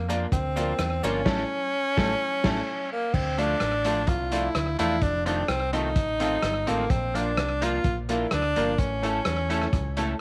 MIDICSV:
0, 0, Header, 1, 6, 480
1, 0, Start_track
1, 0, Key_signature, -1, "minor"
1, 0, Tempo, 470588
1, 1282, Time_signature, 4, 2, 24, 8
1, 10408, End_track
2, 0, Start_track
2, 0, Title_t, "Upright piano"
2, 0, Program_c, 0, 0
2, 88, Note_on_c, 0, 58, 100
2, 93, Note_on_c, 0, 62, 91
2, 97, Note_on_c, 0, 65, 91
2, 100, Note_on_c, 0, 70, 110
2, 235, Note_off_c, 0, 58, 0
2, 238, Note_off_c, 0, 62, 0
2, 240, Note_off_c, 0, 65, 0
2, 241, Note_off_c, 0, 70, 0
2, 568, Note_on_c, 0, 58, 89
2, 572, Note_on_c, 0, 62, 82
2, 579, Note_on_c, 0, 65, 88
2, 580, Note_on_c, 0, 70, 93
2, 715, Note_off_c, 0, 58, 0
2, 717, Note_off_c, 0, 62, 0
2, 720, Note_off_c, 0, 65, 0
2, 721, Note_off_c, 0, 70, 0
2, 1049, Note_on_c, 0, 58, 89
2, 1051, Note_on_c, 0, 62, 88
2, 1058, Note_on_c, 0, 65, 81
2, 1061, Note_on_c, 0, 70, 110
2, 1195, Note_off_c, 0, 58, 0
2, 1196, Note_off_c, 0, 62, 0
2, 1200, Note_off_c, 0, 65, 0
2, 1202, Note_off_c, 0, 70, 0
2, 1279, Note_on_c, 0, 57, 92
2, 1283, Note_on_c, 0, 61, 97
2, 1286, Note_on_c, 0, 64, 100
2, 1291, Note_on_c, 0, 69, 104
2, 1452, Note_off_c, 0, 57, 0
2, 1454, Note_off_c, 0, 61, 0
2, 1456, Note_off_c, 0, 64, 0
2, 1458, Note_off_c, 0, 69, 0
2, 2008, Note_on_c, 0, 57, 108
2, 2012, Note_on_c, 0, 61, 101
2, 2017, Note_on_c, 0, 64, 108
2, 2022, Note_on_c, 0, 69, 106
2, 2165, Note_off_c, 0, 57, 0
2, 2168, Note_off_c, 0, 61, 0
2, 2170, Note_off_c, 0, 64, 0
2, 2174, Note_off_c, 0, 69, 0
2, 2487, Note_on_c, 0, 57, 94
2, 2489, Note_on_c, 0, 61, 91
2, 2494, Note_on_c, 0, 64, 92
2, 2498, Note_on_c, 0, 69, 91
2, 2645, Note_off_c, 0, 57, 0
2, 2646, Note_off_c, 0, 61, 0
2, 2648, Note_off_c, 0, 64, 0
2, 2651, Note_off_c, 0, 69, 0
2, 3446, Note_on_c, 0, 57, 98
2, 3450, Note_on_c, 0, 62, 86
2, 3453, Note_on_c, 0, 65, 90
2, 3457, Note_on_c, 0, 69, 95
2, 3592, Note_off_c, 0, 57, 0
2, 3594, Note_off_c, 0, 62, 0
2, 3596, Note_off_c, 0, 65, 0
2, 3598, Note_off_c, 0, 69, 0
2, 3922, Note_on_c, 0, 57, 90
2, 3927, Note_on_c, 0, 62, 87
2, 3930, Note_on_c, 0, 65, 82
2, 3936, Note_on_c, 0, 69, 109
2, 4070, Note_off_c, 0, 57, 0
2, 4073, Note_off_c, 0, 62, 0
2, 4074, Note_off_c, 0, 65, 0
2, 4077, Note_off_c, 0, 69, 0
2, 4402, Note_on_c, 0, 57, 88
2, 4406, Note_on_c, 0, 62, 81
2, 4408, Note_on_c, 0, 65, 79
2, 4415, Note_on_c, 0, 69, 96
2, 4550, Note_off_c, 0, 57, 0
2, 4552, Note_off_c, 0, 62, 0
2, 4553, Note_off_c, 0, 65, 0
2, 4557, Note_off_c, 0, 69, 0
2, 4882, Note_on_c, 0, 57, 86
2, 4885, Note_on_c, 0, 62, 84
2, 4889, Note_on_c, 0, 65, 82
2, 4894, Note_on_c, 0, 69, 103
2, 5030, Note_off_c, 0, 57, 0
2, 5031, Note_off_c, 0, 62, 0
2, 5033, Note_off_c, 0, 65, 0
2, 5036, Note_off_c, 0, 69, 0
2, 5359, Note_on_c, 0, 60, 81
2, 5363, Note_on_c, 0, 63, 79
2, 5368, Note_on_c, 0, 65, 77
2, 5376, Note_on_c, 0, 69, 101
2, 5508, Note_off_c, 0, 60, 0
2, 5510, Note_off_c, 0, 63, 0
2, 5512, Note_off_c, 0, 65, 0
2, 5516, Note_off_c, 0, 69, 0
2, 5842, Note_on_c, 0, 60, 92
2, 5846, Note_on_c, 0, 63, 85
2, 5850, Note_on_c, 0, 65, 87
2, 5855, Note_on_c, 0, 69, 107
2, 5989, Note_off_c, 0, 60, 0
2, 5991, Note_off_c, 0, 63, 0
2, 5993, Note_off_c, 0, 65, 0
2, 5996, Note_off_c, 0, 69, 0
2, 6320, Note_on_c, 0, 60, 92
2, 6323, Note_on_c, 0, 63, 89
2, 6329, Note_on_c, 0, 65, 77
2, 6335, Note_on_c, 0, 69, 101
2, 6468, Note_off_c, 0, 60, 0
2, 6470, Note_off_c, 0, 63, 0
2, 6473, Note_off_c, 0, 65, 0
2, 6476, Note_off_c, 0, 69, 0
2, 6803, Note_on_c, 0, 60, 102
2, 6808, Note_on_c, 0, 63, 95
2, 6815, Note_on_c, 0, 65, 80
2, 6819, Note_on_c, 0, 69, 110
2, 6950, Note_off_c, 0, 60, 0
2, 6952, Note_off_c, 0, 63, 0
2, 6956, Note_off_c, 0, 65, 0
2, 6958, Note_off_c, 0, 69, 0
2, 7284, Note_on_c, 0, 58, 92
2, 7287, Note_on_c, 0, 62, 85
2, 7291, Note_on_c, 0, 65, 86
2, 7294, Note_on_c, 0, 70, 94
2, 7430, Note_off_c, 0, 58, 0
2, 7432, Note_off_c, 0, 62, 0
2, 7434, Note_off_c, 0, 65, 0
2, 7435, Note_off_c, 0, 70, 0
2, 7768, Note_on_c, 0, 58, 100
2, 7768, Note_on_c, 0, 62, 83
2, 7773, Note_on_c, 0, 65, 96
2, 7777, Note_on_c, 0, 70, 112
2, 7912, Note_off_c, 0, 58, 0
2, 7912, Note_off_c, 0, 62, 0
2, 7915, Note_off_c, 0, 65, 0
2, 7917, Note_off_c, 0, 70, 0
2, 8249, Note_on_c, 0, 58, 95
2, 8254, Note_on_c, 0, 62, 81
2, 8257, Note_on_c, 0, 65, 78
2, 8259, Note_on_c, 0, 70, 94
2, 8393, Note_off_c, 0, 58, 0
2, 8395, Note_off_c, 0, 62, 0
2, 8397, Note_off_c, 0, 65, 0
2, 8398, Note_off_c, 0, 70, 0
2, 8734, Note_on_c, 0, 58, 88
2, 8738, Note_on_c, 0, 62, 84
2, 8746, Note_on_c, 0, 65, 85
2, 8748, Note_on_c, 0, 70, 111
2, 8876, Note_off_c, 0, 58, 0
2, 8878, Note_off_c, 0, 62, 0
2, 8882, Note_off_c, 0, 65, 0
2, 8883, Note_off_c, 0, 70, 0
2, 9205, Note_on_c, 0, 57, 89
2, 9210, Note_on_c, 0, 61, 90
2, 9213, Note_on_c, 0, 64, 75
2, 9217, Note_on_c, 0, 69, 105
2, 9352, Note_off_c, 0, 57, 0
2, 9354, Note_off_c, 0, 61, 0
2, 9355, Note_off_c, 0, 64, 0
2, 9357, Note_off_c, 0, 69, 0
2, 9683, Note_on_c, 0, 57, 95
2, 9688, Note_on_c, 0, 61, 78
2, 9690, Note_on_c, 0, 64, 93
2, 9696, Note_on_c, 0, 69, 106
2, 9831, Note_off_c, 0, 57, 0
2, 9834, Note_off_c, 0, 61, 0
2, 9835, Note_off_c, 0, 64, 0
2, 9837, Note_off_c, 0, 69, 0
2, 10168, Note_on_c, 0, 57, 89
2, 10171, Note_on_c, 0, 61, 79
2, 10174, Note_on_c, 0, 64, 80
2, 10180, Note_on_c, 0, 69, 92
2, 10314, Note_off_c, 0, 57, 0
2, 10315, Note_off_c, 0, 61, 0
2, 10317, Note_off_c, 0, 64, 0
2, 10320, Note_off_c, 0, 69, 0
2, 10408, End_track
3, 0, Start_track
3, 0, Title_t, "Tenor saxophone"
3, 0, Program_c, 1, 66
3, 330, Note_on_c, 1, 60, 100
3, 1017, Note_off_c, 1, 60, 0
3, 1064, Note_on_c, 1, 61, 127
3, 2937, Note_off_c, 1, 61, 0
3, 2983, Note_on_c, 1, 58, 96
3, 3207, Note_on_c, 1, 60, 98
3, 3222, Note_off_c, 1, 58, 0
3, 3453, Note_on_c, 1, 62, 113
3, 3468, Note_off_c, 1, 60, 0
3, 4160, Note_on_c, 1, 65, 95
3, 4175, Note_off_c, 1, 62, 0
3, 4414, Note_on_c, 1, 64, 86
3, 4430, Note_off_c, 1, 65, 0
3, 4882, Note_off_c, 1, 64, 0
3, 4888, Note_on_c, 1, 64, 108
3, 5120, Note_on_c, 1, 62, 103
3, 5135, Note_off_c, 1, 64, 0
3, 5368, Note_off_c, 1, 62, 0
3, 5374, Note_on_c, 1, 62, 91
3, 5592, Note_on_c, 1, 60, 101
3, 5608, Note_off_c, 1, 62, 0
3, 5839, Note_off_c, 1, 60, 0
3, 5845, Note_on_c, 1, 63, 106
3, 6815, Note_on_c, 1, 58, 92
3, 6830, Note_off_c, 1, 63, 0
3, 7039, Note_on_c, 1, 60, 92
3, 7055, Note_off_c, 1, 58, 0
3, 7298, Note_on_c, 1, 62, 99
3, 7314, Note_off_c, 1, 60, 0
3, 7785, Note_on_c, 1, 65, 120
3, 7800, Note_off_c, 1, 62, 0
3, 8121, Note_off_c, 1, 65, 0
3, 8263, Note_on_c, 1, 64, 81
3, 8469, Note_off_c, 1, 64, 0
3, 8494, Note_on_c, 1, 62, 103
3, 8965, Note_on_c, 1, 61, 96
3, 8980, Note_off_c, 1, 62, 0
3, 10404, Note_off_c, 1, 61, 0
3, 10408, End_track
4, 0, Start_track
4, 0, Title_t, "Clean electric guitar"
4, 0, Program_c, 2, 27
4, 86, Note_on_c, 2, 53, 78
4, 93, Note_on_c, 2, 58, 86
4, 96, Note_on_c, 2, 62, 92
4, 98, Note_on_c, 2, 65, 89
4, 256, Note_off_c, 2, 53, 0
4, 259, Note_off_c, 2, 58, 0
4, 261, Note_off_c, 2, 62, 0
4, 262, Note_off_c, 2, 65, 0
4, 570, Note_on_c, 2, 53, 85
4, 573, Note_on_c, 2, 58, 91
4, 576, Note_on_c, 2, 62, 91
4, 580, Note_on_c, 2, 65, 93
4, 737, Note_off_c, 2, 53, 0
4, 739, Note_off_c, 2, 58, 0
4, 740, Note_off_c, 2, 62, 0
4, 742, Note_off_c, 2, 65, 0
4, 1052, Note_on_c, 2, 53, 96
4, 1054, Note_on_c, 2, 58, 91
4, 1059, Note_on_c, 2, 65, 115
4, 1060, Note_on_c, 2, 62, 111
4, 1218, Note_off_c, 2, 53, 0
4, 1219, Note_off_c, 2, 58, 0
4, 1222, Note_off_c, 2, 62, 0
4, 1222, Note_off_c, 2, 65, 0
4, 1279, Note_on_c, 2, 57, 114
4, 1282, Note_on_c, 2, 61, 106
4, 1287, Note_on_c, 2, 64, 103
4, 1288, Note_on_c, 2, 69, 103
4, 1451, Note_off_c, 2, 57, 0
4, 1453, Note_off_c, 2, 61, 0
4, 1456, Note_off_c, 2, 64, 0
4, 1457, Note_off_c, 2, 69, 0
4, 2006, Note_on_c, 2, 57, 108
4, 2007, Note_on_c, 2, 61, 108
4, 2014, Note_on_c, 2, 64, 98
4, 2017, Note_on_c, 2, 69, 106
4, 2164, Note_off_c, 2, 57, 0
4, 2165, Note_off_c, 2, 61, 0
4, 2169, Note_off_c, 2, 64, 0
4, 2171, Note_off_c, 2, 69, 0
4, 2489, Note_on_c, 2, 57, 103
4, 2495, Note_on_c, 2, 61, 94
4, 2499, Note_on_c, 2, 64, 110
4, 2499, Note_on_c, 2, 69, 102
4, 2646, Note_off_c, 2, 57, 0
4, 2649, Note_off_c, 2, 61, 0
4, 2651, Note_off_c, 2, 64, 0
4, 2651, Note_off_c, 2, 69, 0
4, 3447, Note_on_c, 2, 53, 65
4, 3452, Note_on_c, 2, 57, 67
4, 3453, Note_on_c, 2, 62, 71
4, 3457, Note_on_c, 2, 65, 74
4, 3615, Note_off_c, 2, 53, 0
4, 3617, Note_off_c, 2, 57, 0
4, 3618, Note_off_c, 2, 62, 0
4, 3620, Note_off_c, 2, 65, 0
4, 3925, Note_on_c, 2, 53, 95
4, 3929, Note_on_c, 2, 57, 99
4, 3935, Note_on_c, 2, 62, 109
4, 3940, Note_on_c, 2, 65, 98
4, 4093, Note_off_c, 2, 53, 0
4, 4095, Note_off_c, 2, 57, 0
4, 4098, Note_off_c, 2, 62, 0
4, 4101, Note_off_c, 2, 65, 0
4, 4402, Note_on_c, 2, 53, 76
4, 4406, Note_on_c, 2, 57, 84
4, 4411, Note_on_c, 2, 62, 90
4, 4411, Note_on_c, 2, 65, 93
4, 4571, Note_off_c, 2, 53, 0
4, 4573, Note_off_c, 2, 57, 0
4, 4576, Note_off_c, 2, 62, 0
4, 4576, Note_off_c, 2, 65, 0
4, 4879, Note_on_c, 2, 53, 87
4, 4884, Note_on_c, 2, 57, 93
4, 4888, Note_on_c, 2, 62, 84
4, 4892, Note_on_c, 2, 65, 101
4, 5050, Note_off_c, 2, 53, 0
4, 5052, Note_off_c, 2, 57, 0
4, 5054, Note_off_c, 2, 62, 0
4, 5056, Note_off_c, 2, 65, 0
4, 5359, Note_on_c, 2, 51, 84
4, 5364, Note_on_c, 2, 57, 82
4, 5367, Note_on_c, 2, 60, 86
4, 5369, Note_on_c, 2, 65, 81
4, 5529, Note_off_c, 2, 51, 0
4, 5532, Note_off_c, 2, 57, 0
4, 5534, Note_off_c, 2, 60, 0
4, 5534, Note_off_c, 2, 65, 0
4, 5846, Note_on_c, 2, 51, 95
4, 5846, Note_on_c, 2, 57, 97
4, 5854, Note_on_c, 2, 60, 90
4, 5856, Note_on_c, 2, 65, 92
4, 6013, Note_off_c, 2, 51, 0
4, 6013, Note_off_c, 2, 57, 0
4, 6017, Note_off_c, 2, 60, 0
4, 6018, Note_off_c, 2, 65, 0
4, 6326, Note_on_c, 2, 51, 86
4, 6328, Note_on_c, 2, 57, 91
4, 6330, Note_on_c, 2, 60, 100
4, 6334, Note_on_c, 2, 65, 94
4, 6493, Note_off_c, 2, 51, 0
4, 6494, Note_off_c, 2, 57, 0
4, 6495, Note_off_c, 2, 60, 0
4, 6497, Note_off_c, 2, 65, 0
4, 6801, Note_on_c, 2, 51, 95
4, 6803, Note_on_c, 2, 57, 84
4, 6810, Note_on_c, 2, 60, 93
4, 6814, Note_on_c, 2, 65, 94
4, 6970, Note_off_c, 2, 51, 0
4, 6971, Note_off_c, 2, 57, 0
4, 6975, Note_off_c, 2, 60, 0
4, 6976, Note_off_c, 2, 65, 0
4, 7285, Note_on_c, 2, 53, 81
4, 7288, Note_on_c, 2, 58, 65
4, 7291, Note_on_c, 2, 62, 80
4, 7295, Note_on_c, 2, 65, 80
4, 7452, Note_off_c, 2, 53, 0
4, 7454, Note_off_c, 2, 58, 0
4, 7455, Note_off_c, 2, 62, 0
4, 7457, Note_off_c, 2, 65, 0
4, 7764, Note_on_c, 2, 53, 95
4, 7772, Note_on_c, 2, 58, 94
4, 7775, Note_on_c, 2, 62, 106
4, 7779, Note_on_c, 2, 65, 108
4, 7932, Note_off_c, 2, 53, 0
4, 7936, Note_off_c, 2, 58, 0
4, 7937, Note_off_c, 2, 62, 0
4, 7939, Note_off_c, 2, 65, 0
4, 8253, Note_on_c, 2, 53, 81
4, 8256, Note_on_c, 2, 58, 87
4, 8261, Note_on_c, 2, 62, 91
4, 8265, Note_on_c, 2, 65, 88
4, 8417, Note_off_c, 2, 53, 0
4, 8418, Note_off_c, 2, 58, 0
4, 8421, Note_off_c, 2, 62, 0
4, 8423, Note_off_c, 2, 65, 0
4, 8730, Note_on_c, 2, 53, 96
4, 8737, Note_on_c, 2, 58, 91
4, 8738, Note_on_c, 2, 62, 93
4, 8743, Note_on_c, 2, 65, 91
4, 8895, Note_off_c, 2, 53, 0
4, 8899, Note_off_c, 2, 58, 0
4, 8899, Note_off_c, 2, 62, 0
4, 8902, Note_off_c, 2, 65, 0
4, 9210, Note_on_c, 2, 57, 68
4, 9214, Note_on_c, 2, 61, 80
4, 9220, Note_on_c, 2, 64, 76
4, 9220, Note_on_c, 2, 69, 86
4, 9375, Note_off_c, 2, 57, 0
4, 9378, Note_off_c, 2, 61, 0
4, 9381, Note_off_c, 2, 64, 0
4, 9381, Note_off_c, 2, 69, 0
4, 9684, Note_on_c, 2, 57, 86
4, 9689, Note_on_c, 2, 61, 95
4, 9691, Note_on_c, 2, 64, 92
4, 9699, Note_on_c, 2, 69, 96
4, 9853, Note_off_c, 2, 57, 0
4, 9856, Note_off_c, 2, 61, 0
4, 9857, Note_off_c, 2, 64, 0
4, 9860, Note_off_c, 2, 69, 0
4, 10168, Note_on_c, 2, 57, 83
4, 10169, Note_on_c, 2, 61, 94
4, 10173, Note_on_c, 2, 64, 93
4, 10177, Note_on_c, 2, 69, 106
4, 10336, Note_off_c, 2, 57, 0
4, 10336, Note_off_c, 2, 61, 0
4, 10338, Note_off_c, 2, 64, 0
4, 10340, Note_off_c, 2, 69, 0
4, 10408, End_track
5, 0, Start_track
5, 0, Title_t, "Fingered electric bass"
5, 0, Program_c, 3, 33
5, 0, Note_on_c, 3, 41, 81
5, 252, Note_off_c, 3, 41, 0
5, 333, Note_on_c, 3, 38, 86
5, 737, Note_off_c, 3, 38, 0
5, 807, Note_on_c, 3, 40, 91
5, 1019, Note_off_c, 3, 40, 0
5, 1065, Note_on_c, 3, 31, 96
5, 1254, Note_off_c, 3, 31, 0
5, 1289, Note_on_c, 3, 33, 106
5, 1457, Note_off_c, 3, 33, 0
5, 2020, Note_on_c, 3, 33, 89
5, 2172, Note_off_c, 3, 33, 0
5, 2497, Note_on_c, 3, 33, 101
5, 2650, Note_off_c, 3, 33, 0
5, 3205, Note_on_c, 3, 38, 91
5, 3610, Note_off_c, 3, 38, 0
5, 3687, Note_on_c, 3, 33, 91
5, 4162, Note_off_c, 3, 33, 0
5, 4162, Note_on_c, 3, 36, 96
5, 4568, Note_off_c, 3, 36, 0
5, 4646, Note_on_c, 3, 38, 93
5, 4857, Note_off_c, 3, 38, 0
5, 4896, Note_on_c, 3, 40, 93
5, 5087, Note_off_c, 3, 40, 0
5, 5121, Note_on_c, 3, 29, 109
5, 5527, Note_off_c, 3, 29, 0
5, 5599, Note_on_c, 3, 36, 85
5, 6083, Note_off_c, 3, 36, 0
5, 6083, Note_on_c, 3, 33, 88
5, 6489, Note_off_c, 3, 33, 0
5, 6568, Note_on_c, 3, 31, 91
5, 6778, Note_off_c, 3, 31, 0
5, 6827, Note_on_c, 3, 33, 95
5, 7013, Note_off_c, 3, 33, 0
5, 7045, Note_on_c, 3, 34, 94
5, 7530, Note_off_c, 3, 34, 0
5, 7530, Note_on_c, 3, 36, 80
5, 7933, Note_off_c, 3, 36, 0
5, 8003, Note_on_c, 3, 34, 95
5, 8409, Note_off_c, 3, 34, 0
5, 8496, Note_on_c, 3, 38, 88
5, 8703, Note_off_c, 3, 38, 0
5, 8742, Note_on_c, 3, 31, 99
5, 8931, Note_off_c, 3, 31, 0
5, 8967, Note_on_c, 3, 33, 98
5, 9372, Note_off_c, 3, 33, 0
5, 9449, Note_on_c, 3, 40, 83
5, 9853, Note_off_c, 3, 40, 0
5, 9928, Note_on_c, 3, 37, 94
5, 10333, Note_off_c, 3, 37, 0
5, 10408, End_track
6, 0, Start_track
6, 0, Title_t, "Drums"
6, 98, Note_on_c, 9, 69, 72
6, 100, Note_on_c, 9, 42, 85
6, 200, Note_off_c, 9, 69, 0
6, 202, Note_off_c, 9, 42, 0
6, 327, Note_on_c, 9, 36, 127
6, 328, Note_on_c, 9, 42, 89
6, 334, Note_on_c, 9, 69, 52
6, 429, Note_off_c, 9, 36, 0
6, 430, Note_off_c, 9, 42, 0
6, 436, Note_off_c, 9, 69, 0
6, 577, Note_on_c, 9, 69, 70
6, 578, Note_on_c, 9, 42, 92
6, 679, Note_off_c, 9, 69, 0
6, 680, Note_off_c, 9, 42, 0
6, 803, Note_on_c, 9, 37, 98
6, 804, Note_on_c, 9, 69, 56
6, 807, Note_on_c, 9, 42, 71
6, 905, Note_off_c, 9, 37, 0
6, 906, Note_off_c, 9, 69, 0
6, 909, Note_off_c, 9, 42, 0
6, 1057, Note_on_c, 9, 42, 78
6, 1057, Note_on_c, 9, 69, 85
6, 1159, Note_off_c, 9, 42, 0
6, 1159, Note_off_c, 9, 69, 0
6, 1283, Note_on_c, 9, 36, 121
6, 1284, Note_on_c, 9, 38, 121
6, 1284, Note_on_c, 9, 49, 84
6, 1385, Note_off_c, 9, 36, 0
6, 1386, Note_off_c, 9, 38, 0
6, 1386, Note_off_c, 9, 49, 0
6, 2014, Note_on_c, 9, 36, 101
6, 2016, Note_on_c, 9, 38, 100
6, 2116, Note_off_c, 9, 36, 0
6, 2118, Note_off_c, 9, 38, 0
6, 2488, Note_on_c, 9, 38, 107
6, 2488, Note_on_c, 9, 49, 87
6, 2493, Note_on_c, 9, 36, 105
6, 2590, Note_off_c, 9, 38, 0
6, 2590, Note_off_c, 9, 49, 0
6, 2595, Note_off_c, 9, 36, 0
6, 3201, Note_on_c, 9, 36, 120
6, 3203, Note_on_c, 9, 49, 92
6, 3303, Note_off_c, 9, 36, 0
6, 3305, Note_off_c, 9, 49, 0
6, 3451, Note_on_c, 9, 42, 79
6, 3553, Note_off_c, 9, 42, 0
6, 3674, Note_on_c, 9, 37, 91
6, 3678, Note_on_c, 9, 42, 59
6, 3776, Note_off_c, 9, 37, 0
6, 3780, Note_off_c, 9, 42, 0
6, 3923, Note_on_c, 9, 42, 89
6, 4025, Note_off_c, 9, 42, 0
6, 4151, Note_on_c, 9, 42, 78
6, 4159, Note_on_c, 9, 36, 122
6, 4253, Note_off_c, 9, 42, 0
6, 4261, Note_off_c, 9, 36, 0
6, 4403, Note_on_c, 9, 42, 96
6, 4505, Note_off_c, 9, 42, 0
6, 4640, Note_on_c, 9, 37, 90
6, 4643, Note_on_c, 9, 42, 82
6, 4742, Note_off_c, 9, 37, 0
6, 4745, Note_off_c, 9, 42, 0
6, 4885, Note_on_c, 9, 42, 88
6, 4987, Note_off_c, 9, 42, 0
6, 5116, Note_on_c, 9, 42, 76
6, 5118, Note_on_c, 9, 36, 117
6, 5218, Note_off_c, 9, 42, 0
6, 5220, Note_off_c, 9, 36, 0
6, 5367, Note_on_c, 9, 42, 80
6, 5469, Note_off_c, 9, 42, 0
6, 5594, Note_on_c, 9, 37, 95
6, 5597, Note_on_c, 9, 42, 61
6, 5696, Note_off_c, 9, 37, 0
6, 5699, Note_off_c, 9, 42, 0
6, 5845, Note_on_c, 9, 42, 86
6, 5947, Note_off_c, 9, 42, 0
6, 6077, Note_on_c, 9, 42, 92
6, 6078, Note_on_c, 9, 36, 127
6, 6179, Note_off_c, 9, 42, 0
6, 6180, Note_off_c, 9, 36, 0
6, 6323, Note_on_c, 9, 42, 105
6, 6425, Note_off_c, 9, 42, 0
6, 6554, Note_on_c, 9, 37, 92
6, 6557, Note_on_c, 9, 42, 81
6, 6656, Note_off_c, 9, 37, 0
6, 6659, Note_off_c, 9, 42, 0
6, 6805, Note_on_c, 9, 42, 87
6, 6907, Note_off_c, 9, 42, 0
6, 7038, Note_on_c, 9, 36, 127
6, 7039, Note_on_c, 9, 42, 81
6, 7140, Note_off_c, 9, 36, 0
6, 7141, Note_off_c, 9, 42, 0
6, 7295, Note_on_c, 9, 42, 83
6, 7397, Note_off_c, 9, 42, 0
6, 7522, Note_on_c, 9, 37, 104
6, 7525, Note_on_c, 9, 42, 55
6, 7624, Note_off_c, 9, 37, 0
6, 7627, Note_off_c, 9, 42, 0
6, 7771, Note_on_c, 9, 42, 98
6, 7873, Note_off_c, 9, 42, 0
6, 7998, Note_on_c, 9, 42, 76
6, 8001, Note_on_c, 9, 36, 122
6, 8100, Note_off_c, 9, 42, 0
6, 8103, Note_off_c, 9, 36, 0
6, 8250, Note_on_c, 9, 42, 101
6, 8352, Note_off_c, 9, 42, 0
6, 8477, Note_on_c, 9, 37, 102
6, 8480, Note_on_c, 9, 42, 87
6, 8579, Note_off_c, 9, 37, 0
6, 8582, Note_off_c, 9, 42, 0
6, 8732, Note_on_c, 9, 42, 82
6, 8834, Note_off_c, 9, 42, 0
6, 8958, Note_on_c, 9, 42, 86
6, 8961, Note_on_c, 9, 36, 114
6, 9060, Note_off_c, 9, 42, 0
6, 9063, Note_off_c, 9, 36, 0
6, 9214, Note_on_c, 9, 42, 83
6, 9316, Note_off_c, 9, 42, 0
6, 9436, Note_on_c, 9, 37, 106
6, 9440, Note_on_c, 9, 42, 61
6, 9538, Note_off_c, 9, 37, 0
6, 9542, Note_off_c, 9, 42, 0
6, 9691, Note_on_c, 9, 42, 87
6, 9793, Note_off_c, 9, 42, 0
6, 9808, Note_on_c, 9, 37, 66
6, 9910, Note_off_c, 9, 37, 0
6, 9923, Note_on_c, 9, 36, 121
6, 9924, Note_on_c, 9, 42, 87
6, 10025, Note_off_c, 9, 36, 0
6, 10026, Note_off_c, 9, 42, 0
6, 10167, Note_on_c, 9, 42, 100
6, 10269, Note_off_c, 9, 42, 0
6, 10408, End_track
0, 0, End_of_file